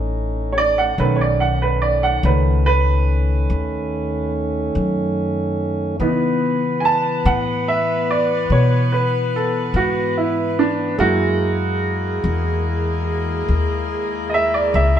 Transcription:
Already playing: A1 A3 C#4 D#4
0.52 C#5
0.58 D5
0.78 F#5
0.98 B1 D#3 A3 C#4 B4
1.16 C#5
1.21 D5
1.40 F#5
1.62 B4
1.82 D5
2.03 F#5
2.23 C#2 D#3 A3 C#4 B4
2.66 B4
3.50 D#2
4.75 F#2
5.99 C#3 E3 B3 D#4 B4
6.80 G#5
6.85 A5
7.25 A2 F#5
7.68 E5
8.11 D5
8.50 B2 C#5
8.92 B4
9.36 A4
9.74 G#2 F#4
10.17 E4
10.59 D4
10.98 F#2 G#3 A#3 E4 F#4 G#4 A#4
12.24 E2
13.48 D#2
14.29 D#5
14.34 E5
14.54 D5
14.74 C#2 E5

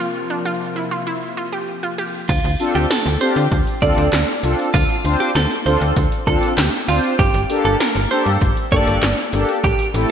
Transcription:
Already playing: C3 F3 A#3
0.00 F4
0.30 D4
0.45 F4
0.76 E4
0.91 F4
1.07 E4
1.37 F4
1.52 G4
1.83 F4
1.98 G4
2.29 D2 F4, kick, closed hi-hat, crash
2.44 D2, closed hi-hat
2.60 C4 D4 F4 A4, closed hi-hat
2.75 D2 G4, closed hi-hat
2.90 A4, snare, closed hi-hat
3.06 D2, closed hi-hat
3.21 C4 D4 F4 G4 C5, closed hi-hat
3.36 D3, closed hi-hat
3.51 D2, kick, closed hi-hat
3.67 closed hi-hat
3.82 D2 C4 D4 F4 A4 D5, kick, closed hi-hat
3.97 D2, closed hi-hat
4.13 D2, snare, clap, closed hi-hat
4.28 closed hi-hat
4.43 C2 C4 D4 F4 A4, closed hi-hat
4.59 closed hi-hat
4.74 D2 F4, kick, closed hi-hat
4.89 closed hi-hat
5.05 D2 C4 D4 F4 C5, closed hi-hat
5.20 G4, closed hi-hat
5.35 D2 A4, snare, closed hi-hat
5.51 closed hi-hat
5.66 D2 C4 D4 F4 A4 C5, closed hi-hat
5.81 D2, closed hi-hat
5.96 D2, kick, closed hi-hat
6.12 closed hi-hat
6.27 D2 C4 D4 F4 A4, kick, closed hi-hat
6.43 closed hi-hat
6.58 D2 G4, snare, clap, closed hi-hat
6.73 closed hi-hat
6.88 D2 C4 D4 F4 C5, closed hi-hat
7.04 closed hi-hat
7.19 G1 G4, kick, closed hi-hat
7.34 G1, closed hi-hat
7.50 A#3 D4 G4 A4, closed hi-hat
7.65 G1 A4, closed hi-hat
7.80 A#4, snare, closed hi-hat
7.95 G1, closed hi-hat
8.11 A#3 D4 G4 A4 C5, closed hi-hat
8.26 G2, closed hi-hat
8.41 G1, kick, closed hi-hat
8.57 closed hi-hat
8.72 G1 A#3 D4 G4 A4 D5, kick, closed hi-hat
8.87 G1, closed hi-hat
9.03 G1, snare, clap, closed hi-hat
9.18 closed hi-hat
9.33 G1 A#3 D4 G4 A4, closed hi-hat
9.49 closed hi-hat
9.64 A1 G4, kick, closed hi-hat
9.79 closed hi-hat
9.94 A1 A3 C4 E4 A4, closed hi-hat

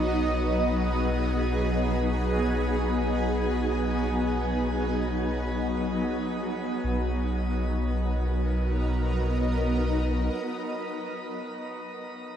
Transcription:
Already playing: B1 F#3 B3 D#4 G#4 D#5
6.84 B1 F#3
7.03 B3
7.19 D#4
7.39 A#4
7.56 D#5

